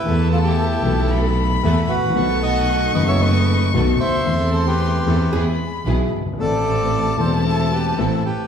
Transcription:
<<
  \new Staff \with { instrumentName = "Violin" } { \time 4/4 \key a \minor \tempo 4 = 114 a''2 b''2 | cis'''1 | c'''2 b''4. r8 | a''1 | }
  \new Staff \with { instrumentName = "Bandoneon" } { \time 4/4 \key a \minor <e' b'>8 <f' a'>16 <e' g'>4. r8. <b' e''>8 <fis' b'>8~ | <fis' b'>8 <dis'' fis''>4 <b' dis''>16 <cis'' e''>16 <b' dis''>4 r8 <c'' e''>8~ | <c'' e''>8 <a' c''>16 <g' b'>4. r4. r16 | <a' d''>4. <a' c''>8 <e' a'>8 <g' b'>8 <e' a'>8 <g' b'>8 | }
  \new Staff \with { instrumentName = "Hollow-body jazz guitar" } { \time 4/4 \key a \minor r1 | r1 | r2 gis'4 e'8. r16 | r1 | }
  \new Staff \with { instrumentName = "String section" } { \time 4/4 \key a \minor <b e' a'>4. <b e' a'>4. <b e' a'>8 r8 | <b dis' a'>4. <b dis' a'>4. <b dis' a'>8 r8 | <c' e' a'>4. <c' e' a'>8 <b e' gis'>8 r8 <b e' gis'>8 r8 | <c' e' a'>4. <c' e' a'>4. <c' e' a'>8 r8 | }
  \new Staff \with { instrumentName = "Grand piano" } { \clef bass \time 4/4 \key a \minor <e, e a b a'>4. <b,, b, e a b a'>4. <e, e a b a'>8 r32 gis,,32 a,,32 bes,,32 | <b,, b, dis a b fis'>4. <fis,, fis, dis a b fis'>4. <b,, b, dis a b fis'>8 r32 cis,32 d,32 dis,32 | <e, e a c' a'>4. <e, e a c' a'>8 <e, e gis b gis'>8 r8 <b,, b, e gis b gis'>8 r32 fis,,32 g,,32 gis,,32 | <a,, a, e a c' a'>4. <e,, e, e a c' a'>4. <a,, a, e a c' a'>8 r8 | }
  \new Staff \with { instrumentName = "Double bass" } { \clef bass \time 4/4 \key a \minor e,4. b,,4. e,8 a,,8 | b,,4. fis,,4. b,,8 d,8 | e,4. e,8 e,8 r8 b,,8 g,,8 | a,,4. e,,4. a,,8 r8 | }
>>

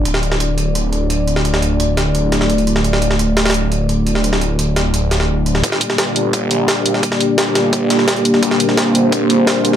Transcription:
<<
  \new Staff \with { instrumentName = "Analog synth pad" } { \time 4/4 \key g \minor \tempo 4 = 172 << { d''1~ | d''1~ | d''1~ | d''1 |
d''1~ | d''1 | c''1 | } \\ { <a d' fis'>1~ | <a d' fis'>1~ | <a d' fis'>1~ | <a d' fis'>1 |
<bes d' g'>1~ | <bes d' g'>1~ | <bes d' g'>1 | } >> }
  \new Staff \with { instrumentName = "Detuned saw bass" } { \clef bass \time 4/4 \key g \minor d,,1~ | d,,1~ | d,,1~ | d,,1 |
g,,8 r8 g,,4. bes,,4. | r4 g,,2~ g,,8 r8 | g,,8 r8 g,,4. bes,,4. | }
  \new DrumStaff \with { instrumentName = "Drums" } \drummode { \time 4/4 hh16 sn16 hh16 sn16 hh8 hh8 hh8 hh8 hh8 hh16 sn16 | hh16 sn16 hh8 hh8 <hh sn>8 hh8 <hh sn>16 sn16 hh16 hh16 hh16 sn16 | hh16 sn16 hh16 sn16 hh8 <hh sn>16 <hh sn>32 <hh sn>32 hh8 hh8 hh8 hh16 sn16 | hh16 sn16 hh8 hh8 <hh sn>8 hh8 <hh sn>16 sn16 r8 hh16 sn16 |
<hh bd>16 sn16 hh16 sn16 <hh bd sn>8 hh8 <hh bd>8 hh8 <hh bd sn>8 hh16 sn16 | <hh bd>16 sn16 hh8 <hh bd sn>8 <hh sn>8 <hh bd>8 <hh sn>16 sn16 <hh bd sn>16 hh16 hh16 sn16 | <hh bd>16 sn16 hh16 sn16 <hh bd sn>8 hh8 <hh bd>8 hh8 <hh bd sn>8 hh16 sn16 | }
>>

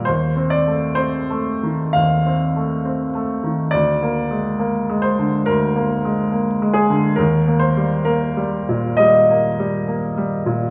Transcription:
<<
  \new Staff \with { instrumentName = "Grand piano" } { \time 4/4 \key ees \major \tempo 4 = 69 c''8 d''8 c''4 f''2 | d''4. c''8 bes'4. aes'8 | bes'8 c''8 bes'4 ees''2 | }
  \new Staff \with { instrumentName = "Grand piano" } { \clef bass \time 4/4 \key ees \major \tuplet 3/2 { ees,8 c'8 a8 c'8 a8 ees8 ees,8 c'8 a8 c'8 a8 ees8 } | \tuplet 3/2 { d,8 bes8 aes8 bes8 aes8 d8 d,8 bes8 aes8 bes8 aes8 d8 } | \tuplet 3/2 { ees,8 bes8 g8 bes8 g8 bes,8 g8 bes8 g8 bes8 g8 bes,8 } | }
>>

